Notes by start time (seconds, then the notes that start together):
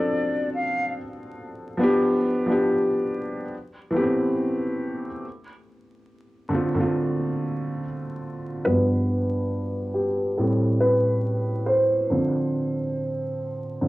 Already playing: F3 B3 C4 D4 G4 A4 D5
0.55 F5
1.77 F3 B3 D4
1.83 G4
2.46 F3 B3 D4
2.52 G4
3.91 E3 A3 B3
3.96 G4
4.01 C4
6.49 D3 A3 C4
6.54 F4
6.74 D3 A3 C4
6.80 F4
8.65 G2 F3 B3 B4
9.94 G4
10.37 A2 G3 C4 A4
10.80 B4
11.66 C5
12.10 D3 F3 C4
13.81 D3 F3 C4